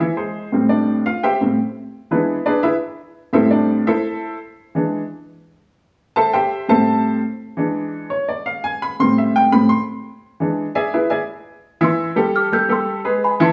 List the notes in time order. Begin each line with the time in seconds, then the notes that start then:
Already playing: E5 G#5
0.00 E3 E4 E5
0.17 G#3 G#4 C5
0.52 A2 G3 C4
0.69 D4 D5
1.06 F4 F5
1.23 G4 C5 E5 G5
1.41 A2 G3 C4
2.11 E3 G#3 B3 D4 E4 G#4 B4
2.46 D4 G#4 B4 D5
2.63 E4 G#4 B4 E5
3.33 A2 G3 C4 E4 A4 C5 E5
3.51 D4 D5
3.87 E4 A4 C5 E5
4.75 E3 G#3 D4
6.16 A4 C5 E5 A5
6.33 G4 C5 E5 G5
6.69 A2 G3 C4 A4 C5 E5 A5
7.57 E3 G#3 D4
8.10 C#5
8.29 D5
8.46 F5
8.64 G#5
8.82 B5
9.00 A2 G3 C4 C6
9.18 E5
9.36 G5
9.52 A2 G3 C4 B5
9.69 C6
10.40 E3 G#3 D4
10.75 G#4 D5 E5 G#5
10.94 E4 G#4 B4 E5
11.10 G#4 D5 E5 G#5
11.81 E3 E4 E5 C6 E6
12.16 G3 G4 A4
12.36 D6 F6
12.52 G3 G4 A4 E6 G6
12.69 G3 G4 A4 C6 E6
13.04 G#3 G#4 B4
13.24 G#5 B5
13.40 E3 E4 E5 A5 C6